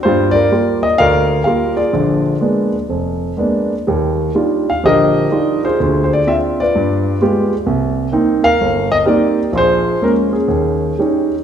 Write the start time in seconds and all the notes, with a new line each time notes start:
0.03 G2 G3 F4 C5
0.31 F4 A#4 D5
0.52 G3 A#3 F4
0.83 D#5
0.98 D2 A#4 D5 F5
1.44 G3 A#3 F4 F5
1.77 F4 G#4 D5
1.93 A#1 D3
2.41 G#3 A#3 B3 D4
2.89 F1
3.37 G#3 A#3 B3 D4
3.87 D#2 G3
4.35 G3 D4 D#4 F4
4.70 F5
4.84 A#1 D3 G4 A#4 D#5
5.31 G3 D4 D#4 F4
5.64 F4 G#4 C5
5.80 D2 D3
6.04 C5
6.13 D5
6.27 C4 D4 F4 E5
6.60 F4 B4 D5
6.75 G2
7.21 G#3 B3 F4 G4
7.66 C2
8.12 A#3 C4 D#4
8.44 A#4 F5
8.61 G1
8.92 D#5
9.05 A#3 C4 D#4 G4 A#4 D5
9.53 A#1 F4 G#4
9.58 C5
10.02 G#3 A#3 C#4 A#4
10.31 C#4 G#4
10.48 D#2
10.99 G3 C#4 D#4